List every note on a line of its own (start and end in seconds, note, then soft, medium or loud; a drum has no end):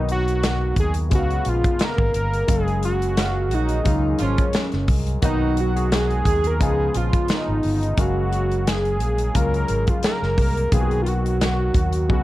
0.00 0.73 B1 loud
0.00 1.10 B2 medium
0.00 0.95 D#3 medium
0.00 0.95 F#3 medium
0.00 0.95 A#3 medium
0.00 0.96 B3 medium
0.00 0.10 D#4 loud
0.00 1.10 D#4 medium
0.00 0.96 F#4 medium
0.00 1.07 A#4 medium
0.09 0.75 F#4 loud
0.09 closed hi-hat medium
0.28 closed hi-hat soft
0.43 snare loud
0.43 closed hi-hat loud
0.76 1.12 D#2 medium
0.76 0.94 G#4 loud
0.76 kick medium
0.76 closed hi-hat medium
0.94 closed hi-hat medium
1.10 1.39 C#2 loud
1.10 2.47 C#3 medium
1.10 2.32 C#3 medium
1.10 2.33 G#3 medium
1.10 2.47 B3 medium
1.10 2.33 B3 medium
1.10 1.19 D#4 medium
1.10 2.46 F5 medium
1.10 kick loud
1.10 closed hi-hat medium
1.15 1.50 F#4 loud
1.15 2.36 F5 medium
1.30 closed hi-hat soft
1.45 1.61 A#1 medium
1.45 1.85 F4 loud
1.45 closed hi-hat medium
1.64 kick loud
1.64 closed hi-hat medium
1.79 snare loud
1.79 closed hi-hat medium
1.84 2.53 A#4 loud
1.98 2.11 G#1 medium
1.98 kick loud
2.14 2.42 G1 medium
2.14 closed hi-hat medium
2.33 closed hi-hat medium
2.47 3.52 F#1 loud
2.47 3.69 C#3 medium
2.47 3.70 F#3 medium
2.47 3.70 G#3 medium
2.47 5.21 G#3 medium
2.47 3.70 A#3 medium
2.47 5.21 G#4 medium
2.47 2.84 G#4 loud
2.47 6.57 A#4 medium
2.47 3.70 F5 medium
2.47 kick loud
2.47 closed hi-hat loud
2.68 closed hi-hat soft
2.83 3.10 G#3 medium
2.83 3.56 F#4 loud
2.83 3.10 G#4 medium
2.83 closed hi-hat medium
3.02 closed hi-hat soft
3.16 3.44 F#3 medium
3.16 3.44 F4 medium
3.16 3.44 F5 medium
3.16 snare loud
3.16 closed hi-hat loud
3.51 3.79 A#1 medium
3.51 3.79 F#3 medium
3.51 4.22 D#4 loud
3.51 3.79 F#4 loud
3.51 closed hi-hat medium
3.69 closed hi-hat medium
3.84 4.13 C#2 loud
3.84 5.06 C#3 medium
3.84 4.13 D#3 medium
3.84 5.07 F#3 medium
3.84 5.07 G#3 medium
3.84 5.07 A#3 medium
3.84 4.13 D#4 medium
3.84 5.07 F4 medium
3.84 kick medium
3.84 closed hi-hat medium
4.19 4.35 G#1 medium
4.19 4.47 F3 loud
4.19 4.86 C#4 medium
4.19 4.47 F4 loud
4.19 closed hi-hat medium
4.38 kick loud
4.38 closed hi-hat medium
4.53 snare loud
4.53 closed hi-hat medium
4.72 4.86 F#1 medium
4.72 snare soft
4.72 closed hi-hat soft
4.88 5.16 C2 medium
4.88 kick loud
4.88 open hi-hat medium
5.07 closed hi-hat medium
5.22 6.22 B1 loud
5.22 6.59 B2 medium
5.22 6.44 D#3 medium
5.22 6.44 F#3 medium
5.22 5.73 F#3 loud
5.22 6.44 A#3 medium
5.22 6.45 B3 medium
5.22 6.59 D#4 medium
5.22 5.62 D#4 loud
5.22 5.73 F#4 loud
5.22 6.45 F#4 medium
5.22 kick loud
5.22 closed hi-hat loud
5.57 5.97 F#4 medium
5.57 closed hi-hat medium
5.75 5.88 G#3 medium
5.75 5.88 G#4 medium
5.75 closed hi-hat medium
5.91 6.19 F#3 medium
5.91 6.19 F#4 medium
5.91 snare loud
5.91 closed hi-hat loud
5.95 6.48 G#4 loud
6.10 closed hi-hat soft
6.25 6.61 D#2 medium
6.25 6.53 G#3 loud
6.25 6.53 G#4 loud
6.25 kick medium
6.25 closed hi-hat medium
6.44 6.64 A#4 loud
6.44 closed hi-hat medium
6.60 6.88 C#2 loud
6.60 7.82 C#3 medium
6.60 7.97 C#3 medium
6.60 6.88 D#3 medium
6.60 7.82 F3 medium
6.60 7.82 G#3 medium
6.60 7.83 B3 medium
6.60 7.97 B3 medium
6.60 6.88 D#4 medium
6.60 7.97 F4 medium
6.60 7.83 F4 medium
6.60 6.99 G#4 loud
6.60 kick medium
6.60 closed hi-hat medium
6.94 7.10 A#1 loud
6.94 7.59 F3 medium
6.94 7.60 F4 loud
6.94 7.32 F4 loud
6.94 closed hi-hat medium
7.13 kick medium
7.13 closed hi-hat medium
7.28 8.02 D#4 loud
7.28 snare loud
7.28 closed hi-hat medium
7.48 7.61 G#1 loud
7.63 7.91 G1 medium
7.63 open hi-hat medium
7.83 closed hi-hat medium
7.97 9.01 F#1 loud
7.97 9.19 C#3 medium
7.97 9.19 F#3 medium
7.97 10.70 F#3 medium
7.97 9.19 G#3 medium
7.97 10.70 A#3 medium
7.97 9.19 A#3 medium
7.97 8.69 F#4 loud
7.97 10.70 G#4 medium
7.97 9.20 F5 medium
7.97 kick loud
7.97 closed hi-hat loud
8.33 closed hi-hat medium
8.51 closed hi-hat soft
8.67 9.38 G#4 loud
8.67 snare loud
8.67 closed hi-hat medium
8.85 closed hi-hat soft
9.00 9.28 A#1 medium
9.00 closed hi-hat medium
9.18 closed hi-hat medium
9.34 9.63 C#2 medium
9.34 10.56 C#3 medium
9.34 10.56 F#3 medium
9.34 10.57 G#3 medium
9.34 10.57 A#3 medium
9.34 10.57 F4 medium
9.34 9.91 A#4 loud
9.34 kick medium
9.34 closed hi-hat medium
9.54 closed hi-hat soft
9.68 9.84 G#1 medium
9.68 closed hi-hat medium
9.87 10.04 F4 loud
9.87 kick medium
9.87 closed hi-hat medium
10.03 10.74 A#4 loud
10.03 snare loud
10.03 closed hi-hat medium
10.22 10.35 F#1 medium
10.22 snare soft
10.38 10.66 C2 medium
10.38 kick loud
10.38 open hi-hat medium
10.57 closed hi-hat medium
10.71 11.71 B1 loud
10.71 12.08 B2 medium
10.71 12.08 D#3 medium
10.71 11.94 D#3 medium
10.71 11.94 F#3 medium
10.71 11.94 A#3 medium
10.71 11.94 B3 medium
10.71 10.80 F4 medium
10.71 11.01 G#4 loud
10.71 12.08 A#4 medium
10.71 kick loud
10.71 closed hi-hat loud
10.80 11.98 F#4 medium
10.91 closed hi-hat soft
11.02 11.10 F4 medium
11.06 12.11 F#4 loud
11.06 closed hi-hat medium
11.26 closed hi-hat medium
11.41 snare loud
11.41 closed hi-hat medium
11.74 12.10 D#2 medium
11.74 kick medium
11.74 closed hi-hat medium
11.93 closed hi-hat medium
12.09 12.23 C#2 loud
12.09 12.23 C#3 medium
12.09 12.23 F#3 medium
12.09 12.23 G#3 medium
12.09 12.23 B3 medium
12.09 12.23 F#4 medium
12.09 kick medium
12.13 12.23 F#4 loud